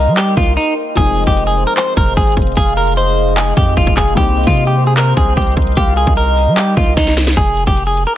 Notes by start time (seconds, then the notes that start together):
Already playing: G3 A#3 C4 D#4 A#4 D#5 G5 C6
0.07 G3
0.17 G4, clap, closed hi-hat
0.37 C2 F4, kick
0.57 D#4
0.95 F1 F3 G#3 C4 G#4 F5, kick, closed hi-hat
0.99 D#4
1.17 D#5, closed hi-hat
1.24 F1 G4, kick, closed hi-hat
1.30 closed hi-hat
1.37 closed hi-hat
1.47 G#4
1.57 C5
1.67 A#4
1.77 C5, clap, closed hi-hat
1.97 F1 A#4, kick, closed hi-hat
2.17 G#1 G#4, kick, closed hi-hat
2.22 closed hi-hat
2.27 closed hi-hat
2.32 closed hi-hat
2.37 F1, kick, closed hi-hat
2.42 closed hi-hat
2.47 closed hi-hat
2.52 closed hi-hat
2.57 F1 G#4 F5, kick, closed hi-hat
2.77 A#4, closed hi-hat
2.82 closed hi-hat
2.87 closed hi-hat
2.92 closed hi-hat
2.97 C5 D#5, closed hi-hat
3.37 G#4, clap, closed hi-hat
3.57 F2 G4, kick
3.77 F1 F4, kick, closed hi-hat
3.87 kick
3.97 G#4 F5, kick, clap, open hi-hat
4.15 C2 G3 A#3 C4 G4 A#4 D#5 G5 C6, kick, closed hi-hat
4.19 D#4
4.37 D#5, closed hi-hat
4.44 C3 F4, kick, closed hi-hat
4.50 closed hi-hat
4.57 closed hi-hat
4.67 G4
4.77 C5
4.87 G#4
4.97 A#4, clap, closed hi-hat
5.17 C2 G#4, kick, closed hi-hat
5.37 C2 G4, kick, closed hi-hat
5.42 closed hi-hat
5.47 closed hi-hat
5.52 closed hi-hat
5.57 C2, kick, closed hi-hat
5.62 closed hi-hat
5.67 closed hi-hat
5.72 closed hi-hat
5.77 C2 G4 F5, kick, closed hi-hat
5.97 G#4, closed hi-hat
6.07 C2, kick
6.17 A#4 D#5, closed hi-hat
6.37 open hi-hat
6.47 G3
6.57 G4, clap, closed hi-hat
6.77 C2 F4, kick
6.97 C2 D#4, kick, snare, closed hi-hat
7.02 closed hi-hat
7.07 snare, closed hi-hat
7.12 closed hi-hat
7.17 snare, open hi-hat
7.27 snare
7.37 F1 G#4, kick, closed hi-hat
7.57 closed hi-hat
7.67 F1 G4, kick
7.77 closed hi-hat
7.87 G#4
7.97 closed hi-hat
8.07 A#4